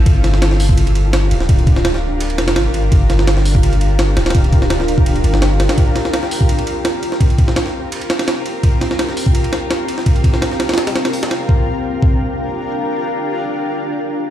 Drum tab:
RD |x---x---x-------x-x-x---x---x---|x-x-x---x-------x-x-x-x-x---x---|x---x---x-------x-x-x---x---x-xx|x-x-x---x---x---x-x-x---x---x-x-|
HH |------------o-------------------|--------------------------------|------------o-------------------|--------------------------------|
SD |----o-o-o-o-------------o-----o-|------o-o-o---------o-o-o-------|----o-o-o-o-------------o---o-oo|------o-o-o-----------o-o---o-o-|
BD |o-------------o-----------------|o---o---------------------------|o-------------o-----------------|o---o---------o-----------------|

RD |x---x---x-------x-x-x---x---x---|x-x-x---x-------x-x-x-x-x---x---|x---x---x-------x-x-x---x---x---|x-x-x---x---x-xxx-x-x-x---x-x---|
HH |------------o-------------------|--------------------------------|------------o-------------------|------------------------o-------|
SD |----o-o-o-o-------------o-----o-|------o-o-o---------o-o-o-------|----o-o-o-o---------o---o-----o-|------o-o-o-o-ooo-o-o-o---o-o---|
BD |o-------------o-----------------|o---o---------------------------|o-------------o-----------------|o---o---------------------------|

RD |--------------------------------|--------------------------------|
HH |--------------------------------|--------------------------------|
SD |--------------------------------|--------------------------------|
BD |o-----------o-------------------|--------------------------------|